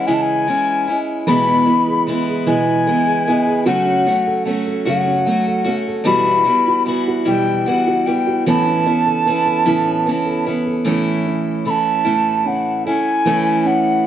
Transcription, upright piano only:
1.27 E3 G#4
1.47 E4
1.67 B3
1.87 G#4
2.07 B3
2.27 G#4
2.47 E3 G#4
2.67 E4
2.87 B3
3.06 G#4
3.27 B3
3.47 G#4
3.66 F#3 A4
3.86 C#4
4.06 A3
4.27 A4
4.47 A3
4.66 A4
4.87 F#3 A4
5.07 C#4
5.28 A3
5.47 A4
5.68 A3
5.88 A4
6.07 G3 F#4
6.27 E4
6.48 B3
6.68 F#4
6.88 B3
7.08 F#4
7.28 G3
7.48 E4
7.68 B3
7.87 F#4
8.08 B3
8.27 F#4
8.47 E3 A4
8.67 C#4
8.86 B3
9.06 A4
9.26 B3
9.46 A4
9.66 E3 A4
9.86 C#4
10.06 B3
10.26 A4
10.46 B3
10.66 A4
10.87 E3 A4
11.26 C#4
11.66 A4
12.06 A3
12.45 C#4
12.85 A4
13.26 E3 A4
13.65 C#4

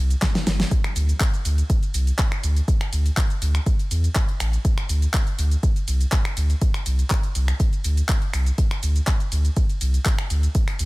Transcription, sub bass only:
Already playing: C2
0.47 G1
0.96 D2
1.45 D2
1.94 C2
2.44 D2
2.93 D2
3.42 D2
3.91 E2
4.40 A1
4.89 D2
5.39 D2
5.88 C2
6.37 D2
6.86 C2
7.35 C2
7.85 D2
8.34 C2
8.83 D2
9.32 D2
9.81 C2
10.30 D2
10.80 D2

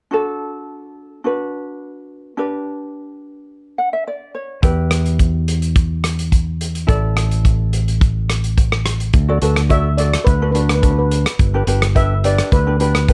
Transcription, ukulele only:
0.11 D4 F#4 A4
1.24 D4 F#4 B4
2.37 D4 G4 B4
3.78 F#5
3.93 E5
4.07 D5
4.35 C#5
4.62 E4 G4 B4
6.87 E4 A4 D5
9.28 F#4 A4 D5
9.42 F#4 A4 B4
9.69 F#4 A4 D5
9.99 F#4 A4 D5
10.42 D4 F#4 B4
10.54 D4 F#4 B4
10.82 D4 F#4 B4
11.54 D4 G4 B4
11.67 D4 G4 B4
11.95 D4 G4 B4
12.24 D4 G4 B4
12.67 D4 G4 B4
12.80 D4 G4 B4
13.08 D4 G4 B4

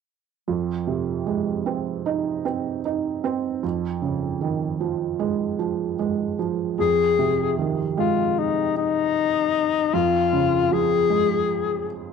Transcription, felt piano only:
0.48 F2
0.87 C3
1.26 G#3
1.66 C4
2.06 D#4
2.45 C4
2.85 D#4
3.24 C4
3.63 F2
4.02 C#3
4.41 D#3
4.80 F3
5.19 G#3
5.59 F3
5.99 G#3
6.39 F3
6.79 F2
7.19 C3
7.59 D#3
7.97 G#3
9.94 F2
10.33 C#3
10.72 F3
11.10 G#3

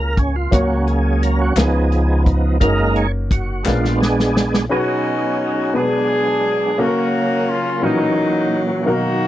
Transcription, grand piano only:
Already playing: A#3 C#4 F4 F#4 G#4 A#4
0.51 C#3 A#3 C#4 F#4 A#4 C#5
1.56 C#3 B3 C#4 F4 G#4 A#4
1.64 B4
2.61 A#3 C#4 D#4 F#4 A#4
3.65 A#2 B3 C#4 F4 G#4 A#4
3.72 D4
4.69 B2 C#4 D#4 F#4 G#4 B4
5.73 B2 B3 D4 F#4 G#4 B4
6.78 A#3 C#4 F#4 A4 F5
6.86 A#4
7.82 A#2 E3 A#3 C#4 F#4 A#4
8.86 B2 F#3 A#3 D#4 F#4 A#4

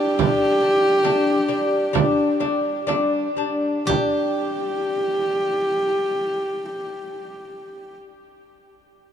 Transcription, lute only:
Already playing: D4
0.19 G3 D4
0.61 G3 D4
1.03 G3 D4
1.48 G3 D4
1.93 G3 D4
2.40 G3 D4
2.87 G3 D4
3.37 G3 D4
3.85 G3 D4

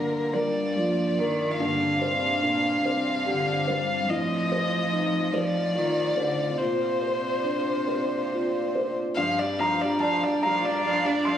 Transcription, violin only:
Already playing: A#4
0.33 D5
1.59 F5
4.10 D#5
5.34 D5
6.58 C5
9.16 F5
9.39 D5
9.59 F5
9.81 D5
10.02 F5
10.24 D5
10.43 F5
10.65 D5
10.86 F5
11.06 D5
11.27 F5

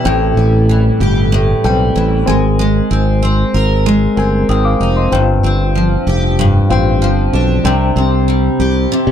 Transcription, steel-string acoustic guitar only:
Already playing: E3 G3 B3 E4
0.05 A2
0.37 G3
0.69 E3
1.01 G4
1.32 A2
1.64 G3
1.96 E3
2.27 G#3
2.59 G#3
2.91 C4
3.23 C4
3.54 A#4
3.86 G#3
4.17 C4
4.49 C4
4.81 D#4
5.12 G2
5.44 C4
5.75 F3
6.07 G4
6.39 G2
6.70 C4
7.02 F3
7.33 D4
7.65 C3
7.97 C4
8.28 G3
8.60 G4
8.92 C3

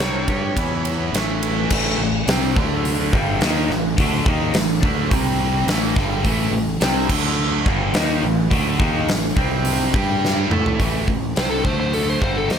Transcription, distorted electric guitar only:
0.01 C3 G3 C4
0.28 G3 D4 G4
0.58 E3 B3 E4
1.13 A2 E3 A3
1.72 A2 E3 A3
2.00 A2 E3
2.28 C3 G3 C4
2.57 D3 A3 D4
3.14 G2 D3 G3
3.42 D#3 A#3 D#4
3.71 A2 E3
4.00 D3 A3 D4
4.27 D#3 A#3 D#4
4.55 A2 E3
4.83 D3 A3 D4
5.11 C3 G3 C4
5.67 A2 E3 A3
5.96 G2 D3 G3
6.23 A2 E3 A3
6.52 A2 E3
6.81 C3 G3 C4
7.10 D3 A3 D4
7.67 G2 D3 G3
7.94 D#3 A#3 D#4
8.24 A2 E3
8.50 D3 A3 D4
8.78 D#3 A#3 D#4
9.08 A2 E3
9.37 C3 G3 C4
9.94 G3 D4 G4
10.51 A3 E4 A4
10.79 A2 E3 A3
11.08 A2 E3
11.37 C3 G3 C4
11.64 D3 A3 D4
12.21 G2 D3 G3
12.48 D#3 A#3 D#4

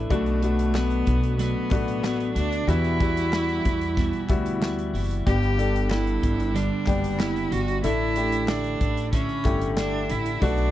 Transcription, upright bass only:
0.10 B1
1.07 B1
1.72 A1
2.36 D2
2.68 E2
3.65 E2
4.30 D2
4.94 F#1
5.27 G1
6.23 G1
6.87 F#1
7.52 G1
7.83 A1
8.81 A1
9.45 G1
10.10 A1
10.42 B1

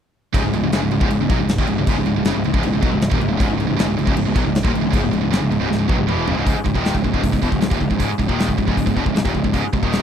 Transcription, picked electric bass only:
0.34 C#1
0.44 C#1
0.53 C#1
0.63 C#1
0.72 F#1
0.83 C#1
0.93 C#1
1.01 C#1
1.12 C#1
1.21 C#1
1.30 B1
1.40 C#1
1.58 D#1
1.68 C#1
1.78 C#1
1.87 C#1
1.97 C#1
2.07 C#1
2.15 C#1
2.24 F#1
2.35 C#1
2.45 C#1
2.54 C#1
2.66 C#1
2.74 C#1
2.82 B1
2.93 C#1
3.11 D#1
3.20 C#1
3.31 C#1
3.40 C#1
3.49 C#1
3.59 C#1
3.69 C#1
3.79 F#1
3.90 C#1
3.99 C#1
4.07 C#1
4.17 C#1
4.28 C#1
4.36 B1
4.45 C#1
4.64 D#1
4.74 C#1
4.84 C#1
4.93 C#1
5.04 C#1
5.13 C#1
5.23 C#1
5.32 F#1
5.42 C#1
5.51 C#1
5.60 C#1
5.69 C#1
5.79 C#1
5.89 B1
5.98 C#1
6.08 E1
6.28 F#1
6.37 C#1
6.46 C#1
6.57 muted picked electric bass stroke
6.66 C#1
6.76 D#1
6.95 C#1
7.05 C#1
7.14 C#1
7.24 C#1
7.33 C#1
7.42 E1
7.52 C#1
7.62 C#1
7.71 D#1
7.81 C#1
7.91 C#1
8.00 C#1
8.10 muted picked electric bass stroke
8.19 C#1
8.29 D#1
8.48 C#1
8.58 C#1
8.68 C#1
8.77 C#1
8.87 C#1
8.96 E1
9.06 C#1
9.15 C#1
9.26 D#1
9.35 C#1
9.45 C#1
9.54 C#1
9.65 muted picked electric bass stroke
9.73 C#1
9.83 D#1

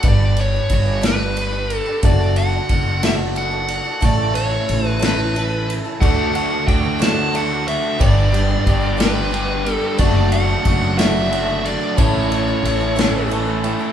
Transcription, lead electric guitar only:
0.08 D5
0.41 C#5
0.74 C#5
1.05 B4
1.76 A4
2.05 D5
2.37 F#5
3.04 E5
3.37 F#5
4.05 D5
4.35 C#5
4.86 B4
5.03 B4
6.00 F#5
6.36 F#5
6.68 G5
7.02 A5
7.36 F#5
7.68 E5
8.01 D5
9.00 B4
9.72 A4
9.99 D5
10.32 F#5
10.98 E5
11.65 D5
11.99 C#5

